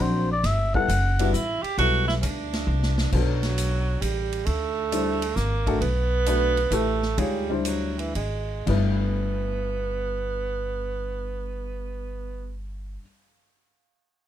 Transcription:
0.00 upright bass A#1, grand piano F#3 C4 D4 F#4, muted trumpet C5
0.31 muted trumpet D5
0.44 upright bass G1, muted trumpet E5, kick, snare, ride
0.74 grand piano G3 B3 E4 A4, muted trumpet F#5, kick
0.88 upright bass F#1, kick, hi-hat pedal, ride
1.19 grand piano G3 B3 E4 F#4, tenor saxophone D4, ride
1.33 upright bass A1, tenor saxophone E4, kick, hi-hat pedal
1.62 tenor saxophone G4, muted upright bass stroke, ride
1.78 upright bass B1, grand piano G3 B3 E4 A4, tenor saxophone F#4, kick, ride
2.08 tenor saxophone E4, snare
2.22 upright bass D2, tenor saxophone D4, kick, hi-hat pedal, ride
2.53 snare, ride
2.67 upright bass C2
2.83 snare
2.98 snare
3.12 upright bass B1, tenor saxophone F#3, grand piano F#3 B3 D4 A4, kick, crash
3.43 snare, ride
3.58 hi-hat pedal, ride
4.01 upright bass A1, tenor saxophone G3, hi-hat pedal, ride
4.32 ride
4.46 upright bass D2, tenor saxophone A3, kick, ride
4.92 grand piano G3 D4 E4 C5, hi-hat pedal, ride
5.22 ride
5.36 upright bass G#1, tenor saxophone A#3, snare, hi-hat pedal
5.66 grand piano A3 D4 F#4 A4, kick, ride
5.81 upright bass B1, tenor saxophone B3, kick, ride
6.26 grand piano A3 D4 F#4 B4, hi-hat pedal, ride
6.57 ride
6.71 upright bass A1, grand piano A3 E4 G4 B4, tenor saxophone A3, hi-hat pedal, ride
7.02 snare
7.18 upright bass D2, tenor saxophone G3, grand piano G#3 D#4 F4 C#5, kick, ride
7.50 grand piano G3 D4 E4 C5
7.65 tenor saxophone F#3, hi-hat pedal, ride
7.99 tenor saxophone E3, ride
8.15 upright bass G#1, tenor saxophone G#3, ride
8.66 upright bass G1, grand piano G2 G3 A3 E4 B4, tenor saxophone B3, kick, crash

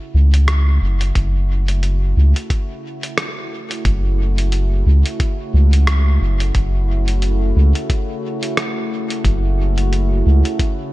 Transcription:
Already playing: ambient pad C#3 A3 E4 F#4
0.14 sub bass C#2
0.34 closed hi-hat
0.48 cross-stick, closed hi-hat
0.82 sub bass F#1
1.01 closed hi-hat
1.15 sub bass F#1, kick, closed hi-hat
1.68 closed hi-hat
1.83 closed hi-hat
2.17 sub bass C#2
2.36 closed hi-hat
2.50 kick, closed hi-hat
3.03 closed hi-hat
3.18 cross-stick, closed hi-hat
3.71 closed hi-hat
3.85 sub bass F#1, kick, closed hi-hat
4.38 closed hi-hat
4.52 closed hi-hat
4.86 sub bass C#2
5.06 closed hi-hat
5.20 kick, closed hi-hat
5.54 sub bass C#2
5.73 closed hi-hat
5.87 cross-stick, closed hi-hat
6.22 sub bass F#1
6.40 closed hi-hat
6.55 sub bass F#1, kick, closed hi-hat
7.08 closed hi-hat
7.22 closed hi-hat
7.56 sub bass C#2
7.75 closed hi-hat
7.90 kick, closed hi-hat
8.43 closed hi-hat
8.57 cross-stick, closed hi-hat
9.10 closed hi-hat
9.25 sub bass F#1, kick, closed hi-hat
9.78 closed hi-hat
9.93 closed hi-hat
10.26 sub bass C#2
10.45 closed hi-hat
10.59 kick, closed hi-hat

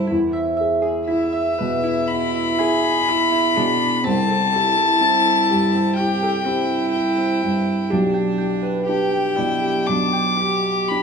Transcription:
Already playing: upright piano C2 G2 E4 G4
0.07 upright piano E2, synth pluck E4
0.33 synth pluck E5
0.57 upright piano G#4, synth pluck E5
0.82 synth pluck G#4
1.07 synth pluck E4, upright piano E4, violin E5
1.33 synth pluck E5
1.58 upright piano B2, synth pluck B4
1.84 synth pluck E4
2.08 cello E4, upright piano E4, violin B5
2.34 synth pluck E5
2.59 synth pluck E4, cello G#4, upright piano G#4
3.08 upright piano E4, cello E4
3.32 synth pluck E4
3.56 upright piano B2, cello D4, synth pluck G#4
4.04 upright piano C2, cello C4, synth pluck C4, violin A5
4.28 synth pluck A4
4.53 cello E4, upright piano G4, synth pluck A4
4.77 synth pluck E4
5.01 synth pluck C4, upright piano E4
5.25 synth pluck A4
5.50 upright piano G2, synth pluck G4
5.74 synth pluck C4
5.96 upright piano E4, cello G4, violin G5
6.23 synth pluck A4
6.46 synth pluck C4, cello E4, upright piano G4
6.92 upright piano E4, violin G5
7.18 synth pluck C4
7.42 upright piano G2, synth pluck E4
7.90 upright piano B1, cello D4, synth pluck G4
8.14 synth pluck G5
8.38 upright piano G4, synth pluck G5
8.62 synth pluck B4
8.87 upright piano D4, synth pluck G4, cello G4, violin G5
9.11 synth pluck G5
9.36 upright piano B2, cello E4, synth pluck D5
9.62 synth pluck G4
9.87 upright piano B1, cello D4, violin D6
10.13 synth pluck G5
10.37 cello G4, synth pluck G4, upright piano G4
10.89 upright piano D4, violin B5

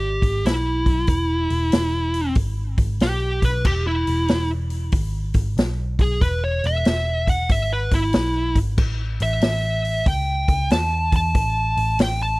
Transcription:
Already playing: picked electric bass G#1, lead electric guitar G4
0.22 picked electric bass G#1, kick, open hi-hat
0.45 picked electric bass B1, lead electric guitar E4, snare, open hi-hat
0.86 picked electric bass B1, kick, open hi-hat
1.07 picked electric bass E1, kick, open hi-hat
1.50 picked electric bass E1, open hi-hat
1.72 picked electric bass E1, snare, open hi-hat
2.14 open hi-hat
2.35 picked electric bass G#1, kick, open hi-hat
2.78 picked electric bass G#1, kick, open hi-hat
3.00 picked electric bass B1, lead electric guitar G4, snare, open hi-hat
3.42 picked electric bass B1, lead electric guitar B4, kick, open hi-hat
3.65 picked electric bass E1, lead electric guitar G4, kick, crash
3.87 lead electric guitar E4
4.07 picked electric bass E1, open hi-hat
4.28 picked electric bass E1, snare, open hi-hat
4.70 open hi-hat
4.92 picked electric bass G#1, kick, open hi-hat
5.34 picked electric bass G#1, kick, open hi-hat
5.57 picked electric bass B1, snare, open hi-hat
5.99 picked electric bass B1, lead electric guitar G#4, kick, open hi-hat
6.21 picked electric bass E1, lead electric guitar B4, kick, open hi-hat
6.44 lead electric guitar C#5
6.64 picked electric bass E1, lead electric guitar E5, open hi-hat
6.85 picked electric bass E1, snare, open hi-hat
7.27 lead electric guitar F#5, kick, open hi-hat
7.49 picked electric bass G#1, lead electric guitar E5, kick, open hi-hat
7.73 lead electric guitar B4
7.91 picked electric bass G#1, lead electric guitar E4, kick, open hi-hat
8.13 picked electric bass B1, snare, open hi-hat
8.55 picked electric bass G#1, kick, open hi-hat
8.78 picked electric bass A1, kick, crash
9.20 picked electric bass A1, lead electric guitar E5, open hi-hat
9.41 picked electric bass A1, snare, open hi-hat
9.85 open hi-hat
10.06 picked electric bass C#2, lead electric guitar G5, kick, open hi-hat
10.48 picked electric bass C#2, kick, open hi-hat
10.70 picked electric bass E2, lead electric guitar A5, snare, open hi-hat
11.12 picked electric bass E2, lead electric guitar A5, kick, open hi-hat
11.35 picked electric bass A1, kick, open hi-hat
11.77 picked electric bass A1, open hi-hat
11.99 picked electric bass A1, lead electric guitar G5, snare, open hi-hat
12.22 lead electric guitar A5

